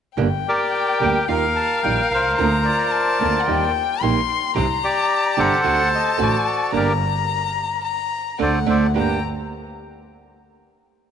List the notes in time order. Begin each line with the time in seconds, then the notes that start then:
0.17 G1 D3 G3 A#3 D4 G4 G5
0.48 G4 A#4 D5
1.00 D2 D3 G3 A#3 D4 G4 G5
1.28 D#2 D#3 G3 D#4 F4 A#4 F5
1.56 A5
1.83 A#1 D#3 G3 D#4 F4 G5
2.11 C2 A#4 C5 F5
2.36 D2 D3 A#3 C4 F4 A#5
2.64 F4 A#4 D5
2.92 A5
3.20 D2 D3 A#3 C4 F4
3.40 F#5
3.46 D#2 D#3 G3 A#3 D#4 G4 G5
4.02 A#1 D#3 G3 A#3 D#4 G4 C6
4.55 C2 C3 G3 C4 D4 G4 A#5
4.84 G4 D5
5.37 G1 C3 G3 C4 D4 G4 A4 C5 F#5
5.63 D2 D3 A3 C4 F#4 A5
5.95 D#5
6.18 A1 D3 A3 C4 F#4
6.22 A4 D5
6.72 G1 G3 A#3 D4 G4 A#5
6.76 A#4 D5
7.85 A#5
8.39 D2 A3 C4 D4 A4 C5 D5 F#5
8.66 D2 A3 C4 D4 A4 C5 D5
8.94 G1 G2 D3 G3 A#3 D4 G4 A#5
9.00 G5